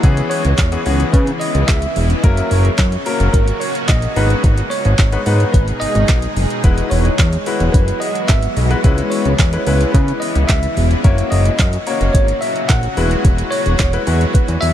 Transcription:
Already playing: G#3 B3
0.03 C#2 C#3 E3 B3 C#4 E4 G#4, kick, closed hi-hat
0.17 closed hi-hat
0.30 C#5, open hi-hat
0.45 C#2, closed hi-hat
0.58 E2, kick, snare, clap, closed hi-hat
0.72 E3 B3 C#4 G#4, closed hi-hat
0.86 C#2 E3 B3 C#4 G#4, open hi-hat
1.00 closed hi-hat
1.12 C#3 B4, kick, closed hi-hat
1.27 closed hi-hat
1.40 D#5, open hi-hat
1.55 C#2, closed hi-hat
1.67 C#2 E5, kick, snare, clap, closed hi-hat
1.82 closed hi-hat
1.96 E1, open hi-hat
2.10 closed hi-hat
2.23 F#1 A#2 F#3 A#3 C#4 F#4 A#4, kick, closed hi-hat
2.37 closed hi-hat
2.50 F#1 C#5, open hi-hat
2.65 closed hi-hat
2.78 F#2, kick, snare, clap, closed hi-hat
2.92 closed hi-hat
3.06 F#3 A#3 C#4 A#4, open hi-hat
3.20 F#1, closed hi-hat
3.33 G#1 A#4, kick, closed hi-hat
3.48 closed hi-hat
3.60 C#5, open hi-hat
3.75 closed hi-hat
3.88 A#1 D#5, kick, snare, clap, closed hi-hat
4.02 closed hi-hat
4.16 G#1 B2 D#3 G#3 B3 D#4 G#4 B4, open hi-hat
4.30 closed hi-hat
4.44 G#1, kick, closed hi-hat
4.58 closed hi-hat
4.70 C#5, open hi-hat
4.85 G#1, closed hi-hat
4.99 G#1, kick, snare, clap, closed hi-hat
5.12 G#3 B3 D#4 B4, closed hi-hat
5.26 G#2 G#3 B3 D#4 B4, open hi-hat
5.40 closed hi-hat
5.53 G#1 B4, kick, closed hi-hat
5.68 closed hi-hat
5.80 G#1 D#5, open hi-hat
5.95 G#1, closed hi-hat
6.09 B1, kick, snare, clap, closed hi-hat
6.22 closed hi-hat
6.36 F#1, open hi-hat
6.50 closed hi-hat
6.64 E1 E3 F#3 G#3 B3 E4 F#4 B4, kick, closed hi-hat
6.78 closed hi-hat
6.90 E1 C#5, open hi-hat
7.05 closed hi-hat
7.19 E2, kick, snare, clap, closed hi-hat
7.33 closed hi-hat
7.46 G#3 E4 F#4 B4, open hi-hat
7.60 E1, closed hi-hat
7.72 F#1 B4, kick, closed hi-hat
7.88 closed hi-hat
8.00 D#5, open hi-hat
8.15 closed hi-hat
8.28 G#1 E5, kick, snare, clap, closed hi-hat
8.43 closed hi-hat
8.57 B1, open hi-hat
8.70 G#3 E4 F#4 B4, closed hi-hat
8.84 C#2 C#3 E3 G#3 C#4 E4 B4, kick, closed hi-hat
8.98 closed hi-hat
9.10 C#5, open hi-hat
9.25 C#2, closed hi-hat
9.39 E2, kick, snare, clap, closed hi-hat
9.53 G#3 C#4 E4 B4, closed hi-hat
9.67 C#2 G#3 C#4 E4 B4, open hi-hat
9.81 closed hi-hat
9.92 C#3 B4, kick, closed hi-hat
10.08 closed hi-hat
10.20 D#5, open hi-hat
10.35 C#2, closed hi-hat
10.48 C#2 E5, kick, snare, clap, closed hi-hat
10.63 closed hi-hat
10.77 E1, open hi-hat
10.91 closed hi-hat
11.04 F#1 A#2 C#3 F#3 A#3 C#4 F#4 C#5, kick, closed hi-hat
11.18 closed hi-hat
11.30 F#1 D#5, open hi-hat
11.45 closed hi-hat
11.59 F#2, kick, snare, clap, closed hi-hat
11.73 closed hi-hat
11.87 A#3 C#4 F#4 C#5, open hi-hat
12.01 F#1, closed hi-hat
12.13 G#1 C#5, kick, closed hi-hat
12.28 closed hi-hat
12.41 E5, open hi-hat
12.56 closed hi-hat
12.68 A#1 F#5, kick, snare, clap, closed hi-hat
12.83 closed hi-hat
12.97 E1 E3 G#3 B3 E4 F#4 B4, open hi-hat
13.11 closed hi-hat
13.25 E1, kick, closed hi-hat
13.38 closed hi-hat
13.51 C#5, open hi-hat
13.66 E1, closed hi-hat
13.79 E1, kick, snare, clap, closed hi-hat
13.93 G#3 E4 F#4 B4, closed hi-hat
14.07 E2 G#3 E4 F#4 B4, open hi-hat
14.21 closed hi-hat
14.33 B4, kick, closed hi-hat
14.48 E2, closed hi-hat
14.61 E2 E5, open hi-hat

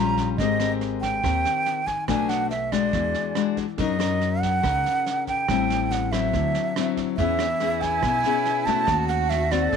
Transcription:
Already playing: A#1 A#2 G3 C#4 F4
0.00 A#5
0.17 kick, snare
0.37 G#1 G#3 C4 G4 D#5, kick, snare
0.41 A#4
0.60 C4 G4 A#4, cross-stick, snare
0.81 snare
1.01 G5, kick, snare
1.24 D#2 D#3 C4 G4 A#4, kick, cross-stick, snare
1.45 snare
1.66 snare
1.87 G#5, kick, snare
2.08 B1 B2 A3 D4 F#4 G#5, kick, cross-stick, snare
2.29 F#5, snare
2.50 E5, snare
2.72 G#3 D4 F#4 D5, kick, cross-stick, snare
2.93 E2 E3, kick, snare
3.14 snare
3.35 G#3 D4 F#4, cross-stick, snare
3.57 kick, snare
3.78 F#2 F#3 C#4 D#4 A#4 D#5, kick, snare
3.99 C#4 D#4 A#4, cross-stick, snare
4.21 snare
4.41 F#5, kick, snare
4.63 C#2 C#3 C#4 D#4 A#4, kick, cross-stick, snare
4.86 snare
5.06 snare
5.27 G5, kick, snare
5.48 A1 A2 G3 C4 E4, kick, cross-stick, snare
5.70 snare
5.91 F#5, snare
6.12 F#3 C4 E4 E5, kick, cross-stick, snare
6.33 D2 D3, kick, snare
6.55 snare
6.76 F#3 C4 E4, cross-stick, snare
6.97 kick, snare
7.17 E2 E3 B3 C#4 E4 G#4 E5, kick, snare
7.39 cross-stick, snare
7.60 B3 C#4 G#4, snare
7.81 G#5, kick, snare
8.03 B1 B2, kick, cross-stick, snare
8.24 B3 C#4 G#4, snare
8.46 snare
8.66 A3 C#4 F#4 A5, kick, snare
8.87 D#2 D#3 F#4, kick, cross-stick, snare
9.08 F#5, snare
9.30 E5, snare
9.51 C4 F#4 D5, kick, cross-stick, snare
9.71 D2 D3 A4, kick, snare

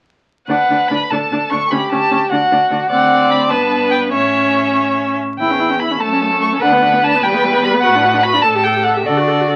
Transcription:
0.48 D2 D4 B4 F#5
0.69 D2 D4
0.88 D2 D4 B5
1.10 D2 D4 A4 A5
1.31 D2 D4
1.50 D2 D4 C#6
1.71 D2 C#4 G4 B5
1.91 D2 C#4 A5
2.11 D2 C#4
2.30 D2 D4 F#4 F#5
2.51 D2 D4
2.70 D2 D4
2.89 D2 C4 D5 F#5
3.31 B5
3.50 G2 B3 B4 A5
3.91 G5
4.11 A2 C#4 C#5 E5
5.39 E2 E4 G5
5.50 C#4
5.59 E4
5.69 C#4
5.80 E4 B5
5.91 C#4
5.98 F#2 A3 A4 A5
6.12 C#4
6.21 A3
6.30 C#4
6.41 A3 C#6
6.52 C#4
6.60 D2 D4 B4 F#5
6.72 B3
6.81 D4
6.93 B3
7.04 D4 A5
7.15 B3
7.22 E2 G3 G5
7.34 B3
7.43 G3
7.53 B3
7.63 G3 B5
7.74 B3
7.81 A2 F#4 F#5
7.95 D4
8.04 F#4
8.13 D4
8.23 F#4 B5
8.34 D4
8.42 A2 A4 A5
8.55 G4
8.64 A4 G5
8.75 G4
8.84 A4 F#5
8.96 G4 E5
9.06 D3 F#4 A4 D5
9.17 F#4
9.27 A4
9.40 F#4
9.49 A4

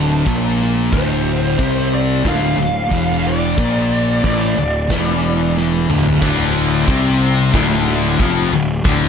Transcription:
Already playing: D1 D2 D3 A5
0.26 A#1 A#2 A#3, kick, crash
0.61 snare
0.92 D1 D2 D3 C5, kick, crash
1.58 C2 C3 C4, kick, crash
1.94 D5
2.25 D1 D2 D3 F5, kick, snare, crash
2.57 D1 D2
2.90 E1 E2 E3, kick, crash
3.27 D5
3.57 A#1 A#2 A#3, kick, crash
4.23 A1 A2 A3, kick, crash
4.56 D1 D2
4.90 E1 E2 E3, kick, snare, crash
5.58 snare
5.89 D1 D2 D3, mid tom
6.06 floor tom
6.22 D1 D2 D3, kick, crash
6.87 C2 C3 C4, kick, open hi-hat
7.54 D1 D2 D3, kick, snare, open hi-hat
8.20 F1 F2 F3, kick, open hi-hat
8.51 D1 D2, snare
8.85 D1 D2 D3, kick, open hi-hat

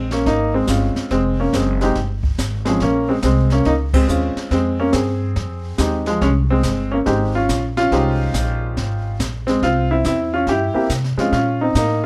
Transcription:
Already playing: A#1 C4
0.11 A#3 C#4, snare
0.25 G#1 A#3 D#4, brush sweep, kick, snare
0.54 G#3 C4
0.67 G1 G#3 C4 C#4 F4, kick, snare, hi-hat pedal
0.96 muted upright bass stroke, snare
1.10 F1 G#3 C4, brush sweep, kick, snare
1.40 A#3 C#4
1.53 F#1 G#3 C4, kick, snare, hi-hat pedal
1.81 G#3 C4 D#4 G4, snare
1.95 G1, brush sweep, kick, snare
2.23 kick
2.38 G#1, kick, snare, hi-hat pedal
2.65 F3 G#3 C4 C#4 G#4, snare
2.80 A#1 A#3 C#4, brush sweep, kick, snare
3.09 G#3 C4
3.22 C2 G#3 C4, kick, snare, hi-hat pedal
3.50 A#3 C#4, snare
3.65 C#2 A#3 D#4, brush sweep, kick, snare
3.94 G#3 C4, kick, crash
4.08 D#2 G#3 C4 C#4 F4, hi-hat pedal
4.36 muted upright bass stroke, snare
4.51 F2 G#3 C4, brush sweep, kick, snare
4.80 A#3 C#4
4.93 G2 C4 G#4, kick, snare, hi-hat pedal
5.36 F2, brush sweep, kick, snare
5.78 D#2 G#3 C4 D#4 G4, kick, snare, hi-hat pedal
6.06 F3 G#3, snare
6.21 C2 G#3 C#4, brush sweep, kick, snare
6.50 G#3 C4
6.63 G1, kick, snare, hi-hat pedal
6.91 A#3 C#4
7.06 G#1 G#3 C4 D#4 G4, brush sweep, kick, snare
7.35 C#4 F4
7.49 A#1, kick, snare, hi-hat pedal
7.77 C#4 F4, snare
7.92 C2 G#3 D#4 G4 C5, brush sweep, kick, snare
8.34 A#1, kick, snare, hi-hat pedal
8.77 G#1, brush sweep, kick, snare
9.19 A#1, kick, snare, hi-hat pedal
9.47 G#3 C4, snare
9.62 C2 C4 F4, brush sweep, kick, snare
9.91 C4 E4
10.04 E2 C4 E4, kick, snare, hi-hat pedal
10.34 C#4 F4
10.47 G2 G4, brush sweep, kick, snare
10.51 E4
10.74 A#3 C4 E4 G4, muted upright bass stroke
10.90 C3, kick, snare, hi-hat pedal
11.04 snare
11.17 G#3 C4 C#4 F4, muted upright bass stroke, snare
11.32 A#2 C#4 F4, brush sweep, kick, snare
11.61 C4 D#4
11.75 A2 A#3 D#4, kick, snare, hi-hat pedal

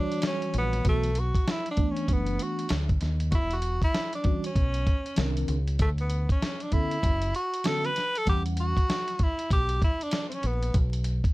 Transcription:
Already playing: E3 G3 D4 F#4 C#5
0.12 closed hi-hat
0.22 snare, closed hi-hat
0.27 C#4
0.42 closed hi-hat
0.54 A#1, closed hi-hat
0.58 B3
0.73 closed hi-hat
0.84 B1 E3 A3 B3 F#4, kick, closed hi-hat
0.88 A3
1.03 closed hi-hat
1.15 closed hi-hat
1.20 F#4
1.34 kick, closed hi-hat
1.48 E4, snare, closed hi-hat
1.66 closed hi-hat
1.71 D4
1.76 E3 A3 B3 D4, kick, closed hi-hat
1.91 C#4
1.97 closed hi-hat
2.08 F#1, kick, closed hi-hat
2.12 B3
2.27 closed hi-hat
2.39 F#4, closed hi-hat
2.59 closed hi-hat
2.69 D2, snare, closed hi-hat
2.89 kick, closed hi-hat
3.01 D#2, snare, closed hi-hat
3.20 closed hi-hat
3.31 E1 E4 F#4, kick, closed hi-hat
3.51 F#4, closed hi-hat
3.62 closed hi-hat
3.82 E4, kick, closed hi-hat
3.94 snare, closed hi-hat
4.13 D4, closed hi-hat
4.24 E3 G3 C#4 F#4, kick, closed hi-hat
4.44 C#4, closed hi-hat
4.55 B1, kick, closed hi-hat
4.74 closed hi-hat
4.87 kick, closed hi-hat
5.06 closed hi-hat
5.16 C2 D#3 C4 D4 A#4, snare, closed hi-hat
5.37 closed hi-hat
5.48 C#2, closed hi-hat
5.68 closed hi-hat
5.79 D2 A3, kick, closed hi-hat
5.98 B3, closed hi-hat
6.10 closed hi-hat
6.29 C#4, kick, closed hi-hat
6.42 snare, closed hi-hat
6.60 D4, closed hi-hat
6.71 D3 B3 C#4 E4 A4, kick, closed hi-hat
6.91 closed hi-hat
7.03 F#1, kick, closed hi-hat
7.22 closed hi-hat
7.35 F#4, closed hi-hat
7.54 closed hi-hat
7.64 D3 B3 C#4 F#4 A4, snare, closed hi-hat
7.85 B4, closed hi-hat
7.96 snare, closed hi-hat
8.15 A4, closed hi-hat
8.25 E2 E3 G3 C#4 G4 F#5, kick, closed hi-hat
8.46 closed hi-hat
8.57 F#4, closed hi-hat
8.77 kick, closed hi-hat
8.90 snare, closed hi-hat
9.08 closed hi-hat
9.19 E4, kick, closed hi-hat
9.39 closed hi-hat
9.51 B1 G4, kick, closed hi-hat
9.69 closed hi-hat
9.82 E4, kick, closed hi-hat
10.01 D4, closed hi-hat
10.11 snare, closed hi-hat
10.29 C4, closed hi-hat
10.34 C#4
10.43 A#1 B3, closed hi-hat
10.63 closed hi-hat
10.74 B1, kick, closed hi-hat
10.93 closed hi-hat
11.04 closed hi-hat
11.24 kick, closed hi-hat

